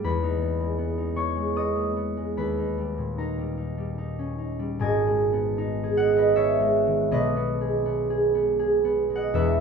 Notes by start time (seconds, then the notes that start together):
Already playing: D#4
0.04 E2 B4 B5
0.23 D#4
0.41 B3
0.60 G#3
0.78 B3
0.98 D#4
1.16 B3 C#5 C#6
1.36 G#3
1.56 B3 D#5 D#6
1.76 A#3
1.96 B3
2.17 G#3
2.37 D#2 B4 B5
2.58 D#4
2.78 G3
2.98 A#2
3.18 D#4 A#4 A#5
3.38 G3
3.57 D#4
3.78 G3
3.98 D#4
4.19 C#4
4.38 D#4
4.59 G3
4.79 G#1 G#2 D#5 G#5
5.08 G#3
5.33 B3
5.58 D#4
5.84 G#4
5.97 D#5 F#5
6.10 D#4
6.17 B4 D#5
6.36 B3 C#5 E5
6.60 G#3
6.87 D#3
7.11 B1 B2 B4 D#5
7.36 B3
7.61 G#4
7.86 B3
8.10 G#4
8.35 B3
8.59 G#4
8.85 B3
9.10 G#3
9.16 D#5 F#5
9.34 E1 E2 B4 E5